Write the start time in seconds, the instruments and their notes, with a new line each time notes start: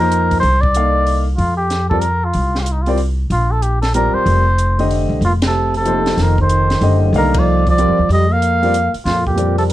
Already playing: upright bass F2, muted trumpet A#4
0.00 upright piano F3 A#3 D#4 A#4 C5
0.12 closed hi-hat
0.31 kick, open hi-hat
0.40 upright bass C2, muted trumpet C5, open hi-hat
0.61 muted trumpet D5, kick
0.74 upright piano A#3 D#4 A4 D5 F5, closed hi-hat
1.07 open hi-hat
1.36 upright bass F2, muted trumpet F4, open hi-hat
1.57 muted trumpet G4
1.70 snare, closed hi-hat
1.90 upright piano G3 C4 F4 A#4 D5, muted trumpet A4, kick
2.01 muted trumpet A#4, closed hi-hat
2.25 muted trumpet F4
2.34 upright bass C2, open hi-hat
2.55 muted trumpet G4, snare
2.63 muted trumpet F4, closed hi-hat
2.72 muted trumpet D#4
2.82 muted trumpet F4
2.86 upright piano G3 C4 F4 A#4 D5, open hi-hat
2.98 open hi-hat
3.30 upright bass A#1, muted trumpet F4, open hi-hat
3.51 muted trumpet A4
3.62 muted trumpet G4, closed hi-hat
3.82 muted trumpet A4, snare, open hi-hat
3.94 upright piano G3 C4 F4 A#4 D5, muted trumpet A#4, closed hi-hat
4.14 muted trumpet C5, muted upright bass stroke
4.26 upright bass F1, open hi-hat
4.58 closed hi-hat
4.79 upright piano D3 A3 G4 C5 D#5, open hi-hat
4.91 open hi-hat
5.09 upright bass C2
5.21 upright bass F1, trombone A#2, muted trumpet F4, open hi-hat
5.42 trombone C3, snare, ride
5.47 muted trumpet A4
5.74 trombone C3, muted trumpet A4, open hi-hat
5.85 upright piano F3 A#3 D#4 A4 C5, closed hi-hat
6.06 snare, open hi-hat
6.17 upright bass F1, trombone D#3, snare, open hi-hat
6.22 muted trumpet A#4
6.38 trombone D#3, muted trumpet C5, kick
6.49 closed hi-hat
6.70 snare, open hi-hat
6.81 upright bass F#1, upright piano D3 A3 G4 C5 D#5, open hi-hat
7.13 upright bass C2, trombone D#3, upright piano A#3 D#4 A4 D5 F5, open hi-hat
7.18 muted trumpet A#4
7.34 trombone F3, kick, ride
7.39 muted trumpet D5
7.67 trombone F3, muted trumpet D5, kick, open hi-hat
7.78 upright piano G3 C4 F4 A#4 D5, closed hi-hat
7.88 upright bass F2
7.99 upright bass D#2
8.09 upright bass F2, trombone G3, muted trumpet D#5, open hi-hat
8.31 trombone A#3, muted trumpet F5
8.42 closed hi-hat
8.62 upright piano G3 C4 F4 A#4 D5, open hi-hat
8.74 closed hi-hat
8.94 muted upright bass stroke, open hi-hat
9.05 upright bass F2, trombone A#2, muted trumpet F4, snare, open hi-hat
9.27 trombone A#2, muted trumpet G4, kick
9.36 upright piano G3 C4 F4 A#4 D5, closed hi-hat
9.58 trombone C3, muted trumpet A4, open hi-hat
9.70 closed hi-hat